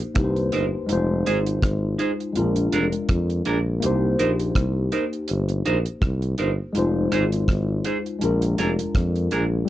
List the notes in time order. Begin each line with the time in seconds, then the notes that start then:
Already playing: A#3 D#4 G4 C5
0.15 C2 A#3 D#4 G4 B4, kick, cross-stick, closed hi-hat
0.24 C5
0.36 closed hi-hat
0.52 G1 D#4 A#4 C5, closed hi-hat
0.86 G#3 D#4, closed hi-hat
0.91 F1 F4 C5
1.26 G#1 D#4 G#4 C5, closed hi-hat
1.46 closed hi-hat
1.62 G#1, kick, cross-stick, closed hi-hat
1.99 D#4 G#4 C5, closed hi-hat
2.20 closed hi-hat
2.33 G#3 C4, closed hi-hat
2.37 A#1 F4 A#4
2.41 D4
2.56 closed hi-hat
2.72 F1 D4 G#4 A#4, closed hi-hat
2.92 closed hi-hat
3.09 F2, kick, cross-stick, closed hi-hat
3.30 closed hi-hat
3.45 A#1 D4 G#4 A#4, closed hi-hat
3.80 C2 A#3 D#4 G4, closed hi-hat
3.86 C5
4.19 A#1 D#4 A#4 C5, closed hi-hat
4.39 closed hi-hat
4.55 C2, kick, cross-stick, closed hi-hat
4.92 D#4 A#4 C5, closed hi-hat
5.13 closed hi-hat
5.28 G1, closed hi-hat
5.49 closed hi-hat
5.66 A#1 D#4 A#4 C5, closed hi-hat
5.86 closed hi-hat
6.02 C2, kick, cross-stick, closed hi-hat
6.22 closed hi-hat
6.38 G1 D#4 A#4 C5, closed hi-hat
6.73 F1 G#3 D#4, closed hi-hat
6.77 F4 C5
7.12 G#1 D#4 G#4 C5, cross-stick, closed hi-hat
7.32 closed hi-hat
7.48 G#1, kick, cross-stick, closed hi-hat
7.85 D#4 G#4 C5, closed hi-hat
8.06 closed hi-hat
8.19 A#1 G#3 D4 F4, closed hi-hat
8.25 A#4
8.42 closed hi-hat
8.58 F1 D4 G#4 A#4, closed hi-hat
8.79 closed hi-hat
8.95 F2, kick, cross-stick, closed hi-hat
9.15 closed hi-hat
9.31 A#1 D4 G#4 A#4, closed hi-hat
9.65 G3